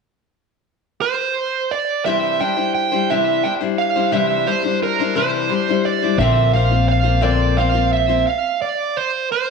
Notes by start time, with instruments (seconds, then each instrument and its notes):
1.01 lead electric guitar C5
1.71 lead electric guitar D5
2.05 steel-string acoustic guitar C3 E3 G3 D4 E4 C5, lead electric guitar E5
2.40 steel-string acoustic guitar G3 D4 E4 C5, lead electric guitar G5
2.56 steel-string acoustic guitar G3 D4 E4 C5
2.74 lead electric guitar G5
2.92 steel-string acoustic guitar G3 D4 E4 C5
3.10 steel-string acoustic guitar C3 E3 G3 D4 E4 C5, lead electric guitar E5
3.44 steel-string acoustic guitar G3 D4 E4 C5, lead electric guitar G5
3.61 steel-string acoustic guitar G3 D4 E4 C5
3.78 lead electric guitar F5
3.96 steel-string acoustic guitar G3 D4 E4 C5
4.12 steel-string acoustic guitar C3 E3 G3 D4 E4 C5, lead electric guitar E5
4.46 steel-string acoustic guitar G3 D4 E4 C5, lead electric guitar C5
4.63 steel-string acoustic guitar G3 D4 E4 C5
4.83 lead electric guitar A#4
4.99 steel-string acoustic guitar G3 D4 E4 C5
5.15 steel-string acoustic guitar C3 E3 G3 D4 E4 C5, lead electric guitar C5
5.50 steel-string acoustic guitar G3 D4 E4 C5
5.68 steel-string acoustic guitar G3 D4 E4 C5
5.85 lead electric guitar D5
6.02 steel-string acoustic guitar G3 D4 E4 C5
6.18 upright bass A#1, steel-string acoustic guitar A#2 D3 A#3 C4 F4 C5, lead electric guitar E5
6.53 steel-string acoustic guitar A#3 C4 F4 C5, lead electric guitar F5
6.70 steel-string acoustic guitar A#3 C4 F4 C5
6.89 lead electric guitar F5
7.04 steel-string acoustic guitar A#3 C4 F4 C5
7.21 steel-string acoustic guitar A#2 D3 A#3 C4 F4 C5, lead electric guitar D5
7.57 steel-string acoustic guitar A#3 C4 F4 C5, lead electric guitar F5
7.73 steel-string acoustic guitar A#3 C4 F4 C5
7.93 lead electric guitar E5
8.08 steel-string acoustic guitar A#3 C4 F4 C5
8.27 lead electric guitar F5
8.62 lead electric guitar D5
8.97 lead electric guitar C5
9.32 lead electric guitar C5